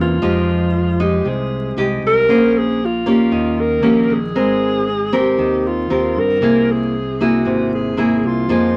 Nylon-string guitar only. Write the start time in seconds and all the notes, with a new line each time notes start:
Already playing: C3 E3 A#3 C#4
0.22 F3 G#3 D#4 G4
1.00 G#3 D#4
1.26 C3
1.77 G#3 D#4 G4
2.29 A#3 C#4 G#4 C5
3.06 A#3 C#4 G4
3.32 D#3
3.82 A#3 C#4 G4
4.35 G#3 C4 A#4
5.13 C4 G4 A#4
5.39 D#3
5.90 C4 G4 A#4
6.42 C3 A#3 E4 G#4
7.21 A#3 E4 G#4
7.46 C3
7.97 A#3 E4 G#4
8.49 F3 A#3 D#4 G#4